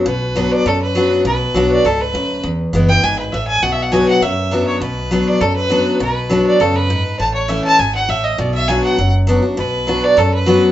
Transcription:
0.06 upright bass B1, steel-string acoustic guitar B2, fiddle B4
0.36 steel-string acoustic guitar F#3 B3 D4 F#4
0.52 fiddle D5
0.65 upright bass F#2, steel-string acoustic guitar F#2, fiddle A4
0.82 fiddle B4
0.95 steel-string acoustic guitar F#3 B3 D4 F#4
1.25 upright bass B1, steel-string acoustic guitar B2, fiddle B4
1.54 upright bass B1, steel-string acoustic guitar F#3 B3 D4 F#4
1.71 fiddle D5
1.84 upright bass C#2, steel-string acoustic guitar G#2, fiddle A4
2.01 fiddle B4
2.14 upright bass D2, steel-string acoustic guitar F#2
2.43 steel-string acoustic guitar E2, upright bass E2
2.73 upright bass F#1, steel-string acoustic guitar E3 G#3 B3 E4
2.88 steel-string acoustic guitar B3 E4, fiddle G5
3.03 upright bass G#1, steel-string acoustic guitar G#2, fiddle G#5
3.19 fiddle B4
3.32 upright bass A1, steel-string acoustic guitar A2, fiddle E5
3.47 fiddle G#5
3.62 upright bass B1, steel-string acoustic guitar B2, fiddle F#5
3.72 fiddle E5
3.82 fiddle F#5
3.92 steel-string acoustic guitar F#3 B3 D4 F#4, fiddle G#5
4.08 fiddle F#5
4.21 upright bass F#2, steel-string acoustic guitar F#2, fiddle E5
4.51 steel-string acoustic guitar F#3 B3 D4 F#4
4.67 fiddle C#5
4.81 upright bass B1, steel-string acoustic guitar B2, fiddle B4
5.11 steel-string acoustic guitar F#3 B3 D4 F#4
5.28 fiddle D5
5.41 upright bass F#2, steel-string acoustic guitar F#2, fiddle A4
5.56 fiddle B4
5.69 steel-string acoustic guitar F#3 B3 D4 F#4
6.00 upright bass B1, steel-string acoustic guitar B2, fiddle B4
6.30 steel-string acoustic guitar F#3 B3 D4 F#4
6.46 fiddle D5
6.60 upright bass F#2, steel-string acoustic guitar C#3, fiddle A4
6.76 fiddle B4
6.90 steel-string acoustic guitar G#2
7.19 upright bass A1, steel-string acoustic guitar A2, fiddle A5
7.34 fiddle C#5
7.48 steel-string acoustic guitar E3 A3 C#4 E4, fiddle E5
7.64 fiddle A5
7.79 upright bass G#1, steel-string acoustic guitar G#2, fiddle G#5
7.95 fiddle F#5
8.09 upright bass A1, steel-string acoustic guitar A2, fiddle E5
8.24 fiddle D#5
8.38 upright bass B1, steel-string acoustic guitar B2, fiddle D5
8.54 fiddle E5
8.68 steel-string acoustic guitar F#3 B3 D4 F#4, fiddle G#5
8.84 fiddle F#5
8.98 upright bass F#1, steel-string acoustic guitar F#2
9.27 steel-string acoustic guitar F#3 B3 D4 F#4
9.42 steel-string acoustic guitar D4 F#4
9.57 upright bass B1, steel-string acoustic guitar B2, fiddle B4
9.87 steel-string acoustic guitar F#3 B3 D4 F#4
10.04 fiddle D5
10.17 steel-string acoustic guitar F#2, upright bass F#2, fiddle A4
10.34 fiddle B4
10.46 steel-string acoustic guitar F#3 B3 D4 F#4

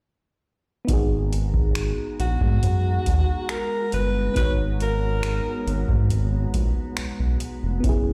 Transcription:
0.85 ambient pad G#3 B3 F#4 A#5, fm electric piano B3 D#4, kick, closed hi-hat
0.89 analog synth bass G#1, fm electric piano F#4
0.93 fm electric piano G#4
1.33 closed hi-hat
1.54 kick
1.75 finger snap, closed hi-hat
2.19 analog synth bass A#1, alto saxophone F#4, closed hi-hat
2.41 analog synth bass G#2, kick
2.63 analog synth bass F#2, closed hi-hat
3.06 analog synth bass D#2, kick, closed hi-hat
3.49 alto saxophone A#4, finger snap, closed hi-hat
3.92 analog synth bass G1, alto saxophone B4, closed hi-hat
4.32 fm electric piano B3 D#4, kick, closed hi-hat
4.36 analog synth bass G#1, fm electric piano F#4, alto saxophone B4
4.41 fm electric piano C#5
4.80 alto saxophone A#4, closed hi-hat
5.23 finger snap, closed hi-hat
5.67 analog synth bass G#1, closed hi-hat
5.88 analog synth bass G#2, kick
6.10 analog synth bass G#1, closed hi-hat
6.54 analog synth bass A#1, kick, closed hi-hat
6.97 analog synth bass B1, finger snap, closed hi-hat
7.20 analog synth bass B1
7.40 closed hi-hat
7.63 analog synth bass F1
7.80 analog synth bass F#1, fm electric piano B3 C#4, kick, closed hi-hat
7.84 ambient pad E3 F#3 G#4, fm electric piano E4
7.89 fm electric piano G#4

